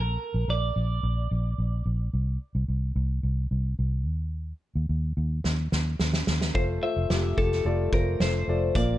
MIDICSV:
0, 0, Header, 1, 5, 480
1, 0, Start_track
1, 0, Key_signature, -1, "major"
1, 0, Tempo, 550459
1, 1867, Time_signature, 4, 2, 24, 8
1, 7832, End_track
2, 0, Start_track
2, 0, Title_t, "Clean electric guitar"
2, 0, Program_c, 0, 27
2, 0, Note_on_c, 0, 70, 86
2, 434, Note_off_c, 0, 70, 0
2, 438, Note_on_c, 0, 74, 79
2, 1597, Note_off_c, 0, 74, 0
2, 5713, Note_on_c, 0, 72, 74
2, 5777, Note_off_c, 0, 72, 0
2, 5954, Note_on_c, 0, 76, 78
2, 6435, Note_on_c, 0, 69, 76
2, 6446, Note_off_c, 0, 76, 0
2, 6917, Note_off_c, 0, 69, 0
2, 6921, Note_on_c, 0, 70, 70
2, 7160, Note_off_c, 0, 70, 0
2, 7164, Note_on_c, 0, 72, 77
2, 7640, Note_on_c, 0, 74, 97
2, 7651, Note_off_c, 0, 72, 0
2, 7832, Note_off_c, 0, 74, 0
2, 7832, End_track
3, 0, Start_track
3, 0, Title_t, "Grand piano"
3, 0, Program_c, 1, 0
3, 5706, Note_on_c, 1, 57, 74
3, 5707, Note_on_c, 1, 72, 78
3, 5708, Note_on_c, 1, 65, 67
3, 5874, Control_c, 1, 64, 127
3, 5935, Note_off_c, 1, 57, 0
3, 5935, Note_off_c, 1, 72, 0
3, 5936, Note_off_c, 1, 65, 0
3, 5949, Note_on_c, 1, 57, 58
3, 5949, Note_on_c, 1, 65, 53
3, 5950, Note_on_c, 1, 72, 63
3, 6176, Note_off_c, 1, 65, 0
3, 6177, Note_off_c, 1, 57, 0
3, 6177, Note_off_c, 1, 72, 0
3, 6193, Note_on_c, 1, 57, 58
3, 6194, Note_on_c, 1, 65, 54
3, 6194, Note_on_c, 1, 67, 66
3, 6415, Note_off_c, 1, 57, 0
3, 6416, Note_off_c, 1, 65, 0
3, 6419, Note_off_c, 1, 67, 0
3, 6428, Note_on_c, 1, 57, 61
3, 6429, Note_on_c, 1, 65, 55
3, 6432, Note_on_c, 1, 67, 67
3, 6656, Note_off_c, 1, 57, 0
3, 6657, Note_off_c, 1, 65, 0
3, 6658, Note_off_c, 1, 67, 0
3, 6677, Note_on_c, 1, 57, 77
3, 6678, Note_on_c, 1, 65, 66
3, 6679, Note_on_c, 1, 74, 81
3, 6901, Note_off_c, 1, 57, 0
3, 6901, Note_off_c, 1, 65, 0
3, 6901, Note_off_c, 1, 74, 0
3, 6916, Note_on_c, 1, 57, 61
3, 6919, Note_on_c, 1, 65, 56
3, 6921, Note_on_c, 1, 72, 65
3, 7140, Note_off_c, 1, 57, 0
3, 7142, Note_off_c, 1, 65, 0
3, 7142, Note_off_c, 1, 72, 0
3, 7162, Note_on_c, 1, 57, 58
3, 7165, Note_on_c, 1, 65, 51
3, 7165, Note_on_c, 1, 72, 61
3, 7383, Note_off_c, 1, 57, 0
3, 7385, Note_off_c, 1, 65, 0
3, 7385, Note_off_c, 1, 72, 0
3, 7400, Note_on_c, 1, 57, 66
3, 7400, Note_on_c, 1, 65, 57
3, 7405, Note_on_c, 1, 74, 68
3, 7622, Note_off_c, 1, 57, 0
3, 7622, Note_off_c, 1, 65, 0
3, 7625, Note_off_c, 1, 74, 0
3, 7637, Note_on_c, 1, 58, 77
3, 7637, Note_on_c, 1, 65, 65
3, 7638, Note_on_c, 1, 46, 53
3, 7639, Control_c, 1, 64, 0
3, 7640, Note_on_c, 1, 74, 86
3, 7816, Control_c, 1, 64, 127
3, 7832, Note_off_c, 1, 46, 0
3, 7832, Note_off_c, 1, 58, 0
3, 7832, Note_off_c, 1, 65, 0
3, 7832, Note_off_c, 1, 74, 0
3, 7832, End_track
4, 0, Start_track
4, 0, Title_t, "Fingered electric bass"
4, 0, Program_c, 2, 33
4, 0, Note_on_c, 2, 34, 88
4, 140, Note_off_c, 2, 34, 0
4, 299, Note_on_c, 2, 34, 85
4, 400, Note_off_c, 2, 34, 0
4, 419, Note_on_c, 2, 34, 77
4, 619, Note_off_c, 2, 34, 0
4, 663, Note_on_c, 2, 34, 84
4, 861, Note_off_c, 2, 34, 0
4, 900, Note_on_c, 2, 34, 88
4, 1100, Note_off_c, 2, 34, 0
4, 1145, Note_on_c, 2, 34, 86
4, 1343, Note_off_c, 2, 34, 0
4, 1381, Note_on_c, 2, 34, 67
4, 1580, Note_off_c, 2, 34, 0
4, 1618, Note_on_c, 2, 34, 78
4, 1818, Note_off_c, 2, 34, 0
4, 1861, Note_on_c, 2, 36, 82
4, 2060, Note_off_c, 2, 36, 0
4, 2222, Note_on_c, 2, 36, 82
4, 2322, Note_off_c, 2, 36, 0
4, 2340, Note_on_c, 2, 36, 73
4, 2540, Note_off_c, 2, 36, 0
4, 2578, Note_on_c, 2, 36, 86
4, 2778, Note_off_c, 2, 36, 0
4, 2818, Note_on_c, 2, 36, 85
4, 3019, Note_off_c, 2, 36, 0
4, 3061, Note_on_c, 2, 36, 80
4, 3260, Note_off_c, 2, 36, 0
4, 3303, Note_on_c, 2, 36, 73
4, 3544, Note_off_c, 2, 36, 0
4, 3544, Note_on_c, 2, 39, 88
4, 3939, Note_off_c, 2, 39, 0
4, 4146, Note_on_c, 2, 39, 73
4, 4245, Note_off_c, 2, 39, 0
4, 4267, Note_on_c, 2, 39, 78
4, 4464, Note_off_c, 2, 39, 0
4, 4508, Note_on_c, 2, 39, 81
4, 4704, Note_off_c, 2, 39, 0
4, 4749, Note_on_c, 2, 39, 91
4, 4945, Note_off_c, 2, 39, 0
4, 4990, Note_on_c, 2, 39, 85
4, 5186, Note_off_c, 2, 39, 0
4, 5231, Note_on_c, 2, 39, 76
4, 5427, Note_off_c, 2, 39, 0
4, 5472, Note_on_c, 2, 39, 78
4, 5667, Note_off_c, 2, 39, 0
4, 5710, Note_on_c, 2, 29, 75
4, 5906, Note_off_c, 2, 29, 0
4, 6073, Note_on_c, 2, 29, 80
4, 6169, Note_off_c, 2, 29, 0
4, 6190, Note_on_c, 2, 29, 77
4, 6386, Note_off_c, 2, 29, 0
4, 6432, Note_on_c, 2, 29, 81
4, 6627, Note_off_c, 2, 29, 0
4, 6671, Note_on_c, 2, 29, 76
4, 6867, Note_off_c, 2, 29, 0
4, 6910, Note_on_c, 2, 29, 77
4, 7106, Note_off_c, 2, 29, 0
4, 7149, Note_on_c, 2, 29, 76
4, 7346, Note_off_c, 2, 29, 0
4, 7391, Note_on_c, 2, 29, 74
4, 7587, Note_off_c, 2, 29, 0
4, 7632, Note_on_c, 2, 34, 88
4, 7828, Note_off_c, 2, 34, 0
4, 7832, End_track
5, 0, Start_track
5, 0, Title_t, "Drums"
5, 4746, Note_on_c, 9, 38, 48
5, 4833, Note_off_c, 9, 38, 0
5, 4990, Note_on_c, 9, 38, 56
5, 5077, Note_off_c, 9, 38, 0
5, 5228, Note_on_c, 9, 38, 70
5, 5315, Note_off_c, 9, 38, 0
5, 5349, Note_on_c, 9, 38, 65
5, 5436, Note_off_c, 9, 38, 0
5, 5469, Note_on_c, 9, 38, 80
5, 5557, Note_off_c, 9, 38, 0
5, 5593, Note_on_c, 9, 38, 76
5, 5680, Note_off_c, 9, 38, 0
5, 5712, Note_on_c, 9, 36, 96
5, 5799, Note_off_c, 9, 36, 0
5, 6192, Note_on_c, 9, 38, 87
5, 6280, Note_off_c, 9, 38, 0
5, 6432, Note_on_c, 9, 36, 69
5, 6520, Note_off_c, 9, 36, 0
5, 6559, Note_on_c, 9, 38, 28
5, 6646, Note_off_c, 9, 38, 0
5, 6912, Note_on_c, 9, 36, 77
5, 6999, Note_off_c, 9, 36, 0
5, 7154, Note_on_c, 9, 38, 90
5, 7241, Note_off_c, 9, 38, 0
5, 7632, Note_on_c, 9, 36, 98
5, 7632, Note_on_c, 9, 42, 75
5, 7719, Note_off_c, 9, 36, 0
5, 7719, Note_off_c, 9, 42, 0
5, 7832, End_track
0, 0, End_of_file